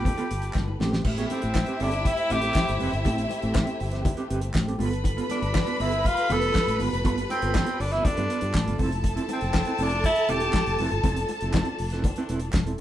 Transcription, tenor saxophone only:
Already playing: G4
1.31 C4
1.82 D4
2.07 E4
2.32 G4
5.31 D4
5.81 E4
6.06 F4
6.32 A4
7.31 C4
7.80 D4
7.92 E4
8.04 D4
9.33 C4
9.82 D4
10.06 E4
10.30 G4

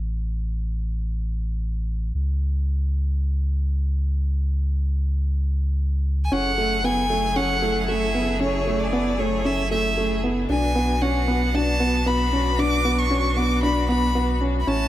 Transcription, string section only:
6.32 C#3 F#3 E4 G#4 A4
10.49 B3 D4 F#4
14.67 A3 E4 F#4

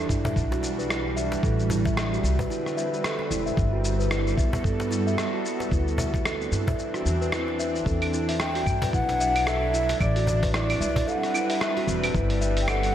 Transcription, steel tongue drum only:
0.09 E4
0.25 E5
0.51 F#4
0.79 B4
0.90 E4
1.16 E5
1.43 A4
1.70 E4
1.86 E5
2.12 F#4
2.39 B4
2.50 E4
2.77 E5
3.04 A4
3.31 E4
3.46 E5
3.73 F#4
3.99 B4
4.11 E4
4.37 E5
4.64 A4
4.91 E4
5.07 E5
5.33 F#4
5.60 B4
5.71 E4
5.98 E5
6.25 A4
6.52 E4
6.68 E5
6.95 F#4
7.21 B4
7.33 E4
7.59 E5
7.86 A4
8.13 E4
8.29 E5
8.56 F#4
8.82 B4
8.94 E4
9.20 E5
9.47 A4
9.74 E4
9.89 E5
10.16 F#4
10.43 B4
10.54 E4
10.81 E5
11.08 A4
11.34 E4
11.50 E5
11.77 F#4
12.03 B4
12.15 E4
12.41 E5
12.68 A4

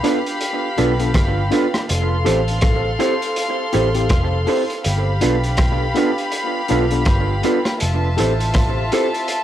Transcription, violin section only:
Already playing: G4 F5 B5
1.90 A4 F5 C6
4.85 G4 F5 B5
7.81 F4 E5 A5

